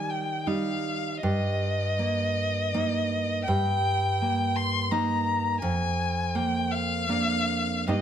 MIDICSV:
0, 0, Header, 1, 3, 480
1, 0, Start_track
1, 0, Tempo, 755668
1, 781, Time_signature, 3, 2, 24, 8
1, 1740, Tempo, 724638
1, 4620, Tempo, 820793
1, 5163, End_track
2, 0, Start_track
2, 0, Title_t, "Violin"
2, 0, Program_c, 0, 40
2, 0, Note_on_c, 0, 80, 57
2, 61, Note_on_c, 0, 79, 46
2, 71, Note_off_c, 0, 80, 0
2, 298, Note_on_c, 0, 77, 55
2, 308, Note_off_c, 0, 79, 0
2, 767, Note_off_c, 0, 77, 0
2, 771, Note_on_c, 0, 75, 71
2, 2196, Note_off_c, 0, 75, 0
2, 2213, Note_on_c, 0, 79, 78
2, 2946, Note_on_c, 0, 84, 73
2, 2956, Note_off_c, 0, 79, 0
2, 3178, Note_on_c, 0, 82, 66
2, 3188, Note_off_c, 0, 84, 0
2, 3640, Note_off_c, 0, 82, 0
2, 3644, Note_on_c, 0, 80, 62
2, 4133, Note_on_c, 0, 79, 62
2, 4143, Note_off_c, 0, 80, 0
2, 4369, Note_on_c, 0, 77, 68
2, 4379, Note_off_c, 0, 79, 0
2, 5087, Note_off_c, 0, 77, 0
2, 5091, Note_on_c, 0, 75, 56
2, 5163, Note_off_c, 0, 75, 0
2, 5163, End_track
3, 0, Start_track
3, 0, Title_t, "Nylon-string guitar"
3, 0, Program_c, 1, 24
3, 0, Note_on_c, 1, 51, 39
3, 0, Note_on_c, 1, 55, 31
3, 290, Note_off_c, 1, 55, 0
3, 297, Note_on_c, 1, 55, 30
3, 299, Note_on_c, 1, 63, 35
3, 753, Note_off_c, 1, 51, 0
3, 754, Note_off_c, 1, 55, 0
3, 754, Note_off_c, 1, 63, 0
3, 782, Note_on_c, 1, 43, 46
3, 1264, Note_on_c, 1, 58, 34
3, 1736, Note_off_c, 1, 58, 0
3, 1743, Note_on_c, 1, 58, 36
3, 1744, Note_on_c, 1, 63, 36
3, 2202, Note_off_c, 1, 43, 0
3, 2202, Note_off_c, 1, 63, 0
3, 2203, Note_off_c, 1, 58, 0
3, 2229, Note_on_c, 1, 43, 49
3, 2720, Note_on_c, 1, 58, 35
3, 3173, Note_off_c, 1, 58, 0
3, 3181, Note_on_c, 1, 58, 41
3, 3184, Note_on_c, 1, 63, 42
3, 3620, Note_off_c, 1, 43, 0
3, 3620, Note_off_c, 1, 58, 0
3, 3622, Note_off_c, 1, 63, 0
3, 3649, Note_on_c, 1, 41, 53
3, 4132, Note_on_c, 1, 58, 36
3, 4614, Note_off_c, 1, 58, 0
3, 4621, Note_on_c, 1, 58, 36
3, 4623, Note_on_c, 1, 62, 44
3, 5071, Note_off_c, 1, 58, 0
3, 5071, Note_off_c, 1, 62, 0
3, 5072, Note_off_c, 1, 41, 0
3, 5081, Note_on_c, 1, 43, 50
3, 5084, Note_on_c, 1, 58, 33
3, 5088, Note_off_c, 1, 58, 0
3, 5088, Note_on_c, 1, 58, 38
3, 5090, Note_on_c, 1, 63, 34
3, 5102, Note_off_c, 1, 63, 0
3, 5163, Note_off_c, 1, 43, 0
3, 5163, Note_off_c, 1, 58, 0
3, 5163, End_track
0, 0, End_of_file